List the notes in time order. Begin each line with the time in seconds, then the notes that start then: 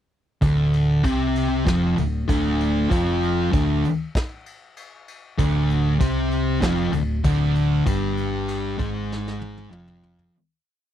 0.42 D1 D2 D3, kick, crash
0.73 crash
1.04 C2 C3 C4, kick, crash
1.36 crash
1.66 F1 F2 F3, kick, snare, crash
1.97 D1 D2, crash
2.28 D1 D2 D3, kick, crash
2.61 crash
2.90 F1 F2 F3, kick, crash
3.23 crash
3.52 D1 D2 D3, kick, crash
3.84 crash
4.15 kick, snare, crash
4.46 crash
4.77 crash
5.08 crash
5.38 D1 D2 D3, kick, crash
5.70 crash
6.00 C2 C3 C4, kick, crash
6.31 crash
6.61 F1 F2 F3, kick, snare, crash
6.93 D1 D2, crash
7.24 D1 D2 D3, kick, crash
7.55 crash
7.86 G1 G2 G3, kick, crash
8.17 crash
8.48 crash
8.78 G#1 G#2 G#3, kick, crash
9.12 snare
9.27 snare
9.41 high tom
9.57 high tom
9.70 F1 F2 F3, mid tom
9.88 mid tom
10.03 floor tom
10.19 floor tom